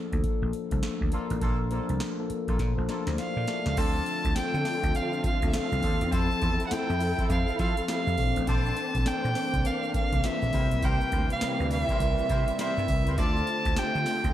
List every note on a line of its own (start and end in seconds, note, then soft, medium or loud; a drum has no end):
0.00 0.12 F3 medium
0.00 0.12 A#3 medium
0.00 0.13 D4 medium
0.00 0.13 A4 medium
0.12 0.21 D2 medium
0.12 0.51 F3 medium
0.12 0.51 A#3 medium
0.12 0.51 D4 medium
0.12 0.51 A4 medium
0.12 kick medium
0.12 closed hi-hat soft
0.24 kick loud
0.24 closed hi-hat medium
0.42 0.51 A#1 loud
0.53 closed hi-hat medium
0.71 0.80 C2 medium
0.71 1.02 F3 medium
0.71 1.02 A#3 medium
0.71 1.02 D4 medium
0.71 1.02 A4 loud
0.71 kick medium
0.71 closed hi-hat medium
0.83 muted slap bass stroke soft
0.83 snare loud
0.83 closed hi-hat medium
1.01 1.10 D2 medium
1.01 kick loud
1.12 1.56 F3 medium
1.12 1.27 A#3 medium
1.12 1.56 A#3 medium
1.12 1.27 D4 medium
1.12 1.56 D4 medium
1.12 1.27 F4 medium
1.12 1.28 A4 medium
1.12 1.57 A#4 medium
1.12 closed hi-hat medium
1.30 1.39 A1 medium
1.30 closed hi-hat medium
1.41 1.79 A#1 loud
1.41 1.57 A#3 medium
1.41 1.57 D4 medium
1.41 1.57 F4 medium
1.41 1.57 A4 loud
1.41 kick loud
1.41 closed hi-hat medium
1.71 2.02 F3 medium
1.71 1.86 A#3 medium
1.71 2.02 A#3 medium
1.71 1.86 D4 medium
1.71 2.02 D4 medium
1.71 1.86 F4 medium
1.71 1.86 A4 medium
1.71 2.03 A#4 loud
1.71 closed hi-hat medium
1.89 1.98 C2 medium
1.89 closed hi-hat medium
2.00 snare loud
2.00 closed hi-hat medium
2.19 2.57 F3 medium
2.19 2.57 A#3 medium
2.19 2.57 D4 medium
2.19 2.58 A4 medium
2.30 muted slap bass stroke soft
2.30 closed hi-hat medium
2.47 2.57 A#1 medium
2.47 2.57 A#3 medium
2.47 2.57 D4 medium
2.47 2.57 F4 medium
2.47 2.57 A4 medium
2.47 kick medium
2.47 closed hi-hat soft
2.59 2.73 A#2 loud
2.59 kick loud
2.59 snare medium
2.59 closed hi-hat medium
2.77 2.86 A#1 medium
2.77 3.08 F3 loud
2.77 3.08 A#3 medium
2.77 2.89 D4 medium
2.77 2.89 A4 loud
2.88 3.04 A#3 medium
2.88 3.04 D4 medium
2.88 3.06 D4 medium
2.88 3.04 F4 medium
2.88 3.04 A4 medium
2.88 3.06 A#4 medium
2.88 3.16 D5 medium
2.88 snare medium
2.88 closed hi-hat medium
3.07 3.16 D2 medium
3.07 3.35 E4 medium
3.07 3.35 C5 medium
3.07 snare medium
3.07 closed hi-hat medium
3.18 3.46 F5 medium
3.18 3.80 F5 medium
3.18 snare medium
3.18 closed hi-hat medium
3.36 3.45 A#2 medium
3.36 3.48 F4 medium
3.36 3.47 D5 medium
3.47 3.65 G4 medium
3.47 3.65 E5 medium
3.47 3.75 A5 medium
3.47 snare medium
3.47 closed hi-hat medium
3.66 3.75 C#2 medium
3.66 3.77 A4 soft
3.66 3.94 F5 medium
3.66 snare medium
3.66 closed hi-hat medium
3.77 4.00 D2 loud
3.77 6.10 D3 medium
3.77 4.21 F3 medium
3.77 6.10 A3 medium
3.77 4.04 C4 medium
3.77 4.21 C4 medium
3.77 8.14 C4 medium
3.77 4.05 D4 medium
3.77 4.21 D4 medium
3.77 4.05 F4 medium
3.77 6.10 F4 medium
3.77 4.05 A4 loud
3.77 4.21 A4 medium
3.77 4.36 A5 loud
3.77 kick loud
3.77 closed hi-hat medium
3.77 crash loud
3.77 tambourine medium
3.77 shaker medium
3.95 shaker soft
4.06 closed hi-hat medium
4.06 shaker soft
4.25 4.33 D2 medium
4.25 kick loud
4.25 closed hi-hat medium
4.25 shaker soft
4.36 4.80 F3 medium
4.36 4.80 C4 medium
4.36 4.80 D4 medium
4.36 4.80 A4 loud
4.36 4.97 G5 loud
4.36 muted slap bass stroke soft
4.36 snare loud
4.36 closed hi-hat medium
4.36 tambourine loud
4.36 shaker medium
4.54 4.63 D3 medium
4.54 shaker medium
4.65 snare medium
4.65 open hi-hat medium
4.65 tambourine medium
4.65 shaker medium
4.83 4.92 D2 medium
4.83 kick loud
4.83 closed hi-hat soft
4.83 shaker soft
4.94 5.38 F3 medium
4.94 5.39 C4 medium
4.94 5.39 D4 medium
4.94 5.39 A4 medium
4.94 5.25 F5 medium
4.94 closed hi-hat medium
4.94 tambourine medium
4.94 shaker medium
5.13 shaker soft
5.24 5.47 F5 medium
5.24 muted slap bass stroke soft
5.24 kick loud
5.24 closed hi-hat medium
5.24 tambourine medium
5.24 shaker medium
5.42 5.51 D2 loud
5.42 kick medium
5.42 closed hi-hat medium
5.42 shaker medium
5.49 5.56 E5 medium
5.53 5.97 F3 medium
5.53 5.97 C4 medium
5.53 5.98 D4 medium
5.53 5.98 A4 medium
5.53 6.13 F5 medium
5.53 snare loud
5.53 closed hi-hat medium
5.53 tambourine medium
5.53 shaker medium
5.72 5.80 C2 medium
5.72 shaker medium
5.82 5.97 D#2 medium
5.82 5.98 C4 medium
5.82 5.98 D4 medium
5.82 5.98 F4 medium
5.82 5.98 A4 medium
5.82 kick loud
5.82 open hi-hat medium
5.82 tambourine medium
5.82 shaker soft
6.01 6.10 E2 loud
6.01 closed hi-hat medium
6.01 shaker medium
6.12 6.26 F2 loud
6.12 6.56 F3 medium
6.12 8.16 F3 medium
6.12 6.27 C4 loud
6.12 6.56 C4 medium
6.12 6.27 E4 medium
6.12 8.16 E4 medium
6.12 6.56 E4 medium
6.12 6.27 F4 medium
6.12 8.16 A4 medium
6.12 6.28 A4 loud
6.12 6.57 A4 medium
6.12 6.63 A5 loud
6.12 kick loud
6.12 closed hi-hat medium
6.12 tambourine medium
6.12 shaker medium
6.31 shaker soft
6.41 6.56 E2 loud
6.41 6.57 C4 medium
6.41 6.57 E4 medium
6.41 6.57 F4 medium
6.41 6.57 A4 medium
6.41 kick medium
6.41 closed hi-hat medium
6.41 shaker soft
6.60 closed hi-hat medium
6.60 shaker soft
6.67 6.74 F#5 medium
6.71 7.15 F3 medium
6.71 7.15 C4 medium
6.71 7.15 E4 medium
6.71 7.15 A4 loud
6.71 7.30 G5 medium
6.71 muted slap bass stroke medium
6.71 snare loud
6.71 closed hi-hat medium
6.71 tambourine loud
6.71 shaker medium
6.89 7.12 F2 medium
6.89 shaker soft
7.00 open hi-hat medium
7.00 tambourine medium
7.00 shaker medium
7.18 7.28 C4 medium
7.18 7.28 E4 medium
7.18 7.28 F4 medium
7.18 7.28 A4 medium
7.18 kick loud
7.18 closed hi-hat soft
7.18 shaker medium
7.29 7.44 F2 medium
7.29 7.74 F3 medium
7.29 7.74 C4 medium
7.29 7.74 E4 medium
7.29 7.74 A4 medium
7.29 7.58 F5 medium
7.29 kick loud
7.29 closed hi-hat medium
7.29 tambourine medium
7.29 shaker medium
7.48 shaker soft
7.59 7.73 F3 loud
7.59 7.74 C4 medium
7.59 7.74 E4 medium
7.59 7.74 F4 medium
7.59 7.75 A4 medium
7.59 7.87 F5 medium
7.59 kick medium
7.59 closed hi-hat medium
7.59 tambourine medium
7.59 shaker soft
7.77 closed hi-hat medium
7.77 shaker medium
7.88 8.18 F3 medium
7.88 8.17 C4 medium
7.88 8.18 E4 medium
7.88 8.18 G4 medium
7.88 8.44 F5 medium
7.88 snare loud
7.88 closed hi-hat medium
7.88 tambourine medium
7.88 shaker medium
8.07 8.16 F2 medium
8.07 shaker medium
8.17 8.32 A#1 loud
8.17 8.91 E3 medium
8.17 13.14 A#3 medium
8.17 8.91 C4 medium
8.17 10.51 C4 medium
8.17 10.51 D4 medium
8.17 8.91 D4 medium
8.17 8.92 A4 medium
8.17 kick loud
8.17 open hi-hat medium
8.17 tambourine medium
8.17 shaker soft
8.36 8.45 A1 medium
8.36 closed hi-hat medium
8.36 shaker medium
8.47 8.70 A#1 loud
8.47 8.75 D4 loud
8.47 8.75 E4 medium
8.47 8.75 A4 medium
8.47 8.75 C5 loud
8.47 9.09 A5 loud
8.47 kick loud
8.47 closed hi-hat medium
8.47 tambourine medium
8.47 shaker medium
8.66 shaker soft
8.77 closed hi-hat medium
8.77 shaker medium
8.95 9.04 A#1 loud
8.95 kick loud
8.95 closed hi-hat medium
8.95 shaker soft
9.06 9.50 E3 medium
9.06 9.50 C4 medium
9.06 9.50 D4 medium
9.06 9.50 A4 medium
9.06 9.68 G5 loud
9.06 muted slap bass stroke soft
9.06 snare loud
9.06 closed hi-hat medium
9.06 tambourine loud
9.06 shaker medium
9.24 9.33 A#2 medium
9.24 shaker soft
9.35 snare medium
9.35 open hi-hat medium
9.35 tambourine medium
9.35 shaker medium
9.54 9.62 C2 medium
9.54 kick loud
9.54 closed hi-hat soft
9.54 shaker medium
9.64 10.09 E3 medium
9.64 10.09 C4 medium
9.64 10.09 D4 medium
9.64 10.09 A#4 medium
9.64 9.95 F5 medium
9.64 closed hi-hat medium
9.64 tambourine medium
9.64 shaker medium
9.83 shaker soft
9.94 10.27 F5 medium
9.94 muted slap bass stroke medium
9.94 kick medium
9.94 closed hi-hat medium
9.94 tambourine medium
9.94 shaker medium
10.12 10.21 C2 medium
10.12 kick loud
10.12 closed hi-hat medium
10.12 shaker medium
10.23 10.53 E3 medium
10.23 10.52 C4 medium
10.23 10.54 D4 medium
10.23 10.54 F4 medium
10.23 10.86 E5 loud
10.23 snare loud
10.23 closed hi-hat medium
10.23 tambourine medium
10.23 shaker medium
10.42 10.51 A#1 medium
10.42 shaker medium
10.53 10.67 C2 loud
10.53 13.15 C3 medium
10.53 13.16 E3 medium
10.53 11.26 G3 medium
10.53 13.15 G3 medium
10.53 11.27 C4 medium
10.53 10.68 E4 medium
10.53 11.27 E4 medium
10.53 10.68 G4 medium
10.53 10.62 A4 medium
10.53 10.69 A#4 medium
10.53 10.69 C5 medium
10.53 kick loud
10.53 open hi-hat medium
10.53 tambourine medium
10.53 shaker soft
10.60 11.30 A#4 medium
10.71 10.80 B1 medium
10.71 closed hi-hat medium
10.71 shaker soft
10.82 10.97 C2 loud
10.82 10.98 E4 loud
10.82 10.98 G4 medium
10.82 10.98 A#4 loud
10.82 10.98 C5 loud
10.82 11.31 G5 loud
10.82 kick loud
10.82 closed hi-hat medium
10.82 tambourine medium
10.82 shaker medium
11.01 shaker soft
11.12 11.26 D2 loud
11.12 11.27 E4 medium
11.12 11.27 G4 medium
11.12 11.27 A#4 medium
11.12 11.27 C5 medium
11.12 kick loud
11.12 closed hi-hat medium
11.12 shaker medium
11.30 11.69 F5 medium
11.30 closed hi-hat medium
11.30 shaker soft
11.41 11.85 G3 medium
11.41 11.85 C4 medium
11.41 11.86 E4 medium
11.41 11.86 A#4 loud
11.41 muted slap bass stroke soft
11.41 snare loud
11.41 closed hi-hat medium
11.41 tambourine loud
11.41 shaker medium
11.60 11.83 D2 medium
11.60 shaker soft
11.71 12.56 E5 loud
11.71 open hi-hat medium
11.71 tambourine medium
11.71 shaker medium
11.89 11.98 E4 medium
11.89 11.98 G4 medium
11.89 11.99 A#4 medium
11.89 11.99 C5 medium
11.89 kick loud
11.89 closed hi-hat soft
11.89 shaker medium
12.00 12.14 C2 medium
12.00 12.44 G3 medium
12.00 12.44 C4 medium
12.00 12.45 E4 medium
12.00 12.45 A#4 medium
12.00 kick loud
12.00 closed hi-hat medium
12.00 tambourine medium
12.00 shaker medium
12.18 shaker medium
12.29 12.44 C3 loud
12.29 12.45 E4 medium
12.29 12.45 G4 medium
12.29 12.45 A#4 medium
12.29 12.45 C5 medium
12.29 kick loud
12.29 closed hi-hat medium
12.29 tambourine medium
12.29 shaker soft
12.48 closed hi-hat medium
12.48 shaker medium
12.59 13.03 G3 medium
12.59 13.03 C4 medium
12.59 12.74 E4 medium
12.59 13.03 E4 medium
12.59 12.74 G4 medium
12.59 12.74 A#4 medium
12.59 13.04 A#4 medium
12.59 12.75 C5 medium
12.59 13.15 E5 medium
12.59 snare loud
12.59 closed hi-hat medium
12.59 tambourine medium
12.59 shaker medium
12.78 12.86 G2 medium
12.78 shaker medium
12.88 13.03 C2 loud
12.88 kick loud
12.88 open hi-hat medium
12.88 tambourine medium
12.88 shaker soft
13.06 13.15 C#2 medium
13.06 13.16 E4 medium
13.06 13.16 G4 medium
13.06 13.16 A#4 medium
13.06 13.16 C5 medium
13.06 closed hi-hat medium
13.06 shaker soft
13.18 13.41 D2 loud
13.18 14.33 D3 medium
13.18 13.62 A3 medium
13.18 14.33 A3 medium
13.18 14.33 C4 medium
13.18 13.62 D4 medium
13.18 13.45 F4 loud
13.18 14.33 F4 medium
13.18 13.62 F4 medium
13.18 13.46 A4 medium
13.18 13.46 C5 medium
13.18 13.62 C5 loud
13.18 13.46 D5 loud
13.18 13.80 A5 loud
13.18 kick loud
13.18 closed hi-hat medium
13.18 tambourine medium
13.18 shaker medium
13.36 shaker soft
13.47 closed hi-hat medium
13.47 shaker medium
13.65 13.74 D2 medium
13.65 kick loud
13.65 closed hi-hat medium
13.65 shaker soft
13.76 14.20 A3 medium
13.76 14.21 D4 medium
13.76 14.21 F4 medium
13.76 14.21 G4 medium
13.76 14.33 G5 loud
13.76 muted slap bass stroke soft
13.76 snare loud
13.76 closed hi-hat medium
13.76 tambourine loud
13.76 shaker medium
13.95 14.04 D3 medium
13.95 shaker soft
14.06 snare medium
14.06 open hi-hat medium
14.06 tambourine medium
14.06 shaker medium
14.24 14.33 D2 medium
14.24 kick medium
14.24 closed hi-hat soft
14.24 shaker medium